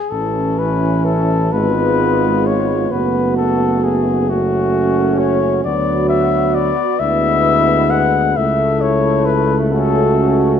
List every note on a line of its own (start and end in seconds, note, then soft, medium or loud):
0.00 0.12 G#4 medium
0.10 1.53 A1 medium
0.10 1.54 E3 medium
0.10 1.49 C#4 medium
0.10 1.48 E4 medium
0.10 0.60 A4 medium
0.59 1.07 B4 medium
1.05 1.54 A4 medium
1.51 2.90 G#1 medium
1.51 2.93 G#3 medium
1.51 2.90 B3 medium
1.51 2.91 F4 medium
1.51 2.48 B4 medium
2.46 2.92 C#5 medium
2.91 5.61 F#1 medium
2.91 4.28 A3 soft
2.91 4.31 B3 medium
2.91 4.29 F#4 medium
2.91 3.36 B4 medium
3.36 3.85 A4 medium
3.84 4.31 G#4 medium
4.29 5.65 A3 medium
4.29 5.67 C#4 medium
4.29 5.20 F#4 medium
4.29 5.63 F#4 medium
5.19 5.64 C#5 medium
5.64 6.72 D2 medium
5.64 6.72 F#3 medium
5.64 6.99 B3 medium
5.64 6.99 F#4 medium
5.64 6.08 D5 medium
6.09 6.56 E5 medium
6.55 7.01 D5 medium
6.99 8.34 D2 medium
6.99 8.39 G#3 medium
6.99 8.36 B3 medium
6.99 8.20 E4 medium
6.99 7.92 E5 loud
7.90 8.38 F#5 medium
8.36 10.60 C#2 medium
8.36 10.60 A3 medium
8.36 9.70 A3 medium
8.36 9.69 E4 medium
8.36 8.83 E5 medium
8.81 9.27 C#5 medium
9.26 9.58 B4 medium
9.71 10.03 C#4 medium
9.71 10.60 F#4 medium
9.71 10.57 A4 medium
10.16 10.59 C#4 medium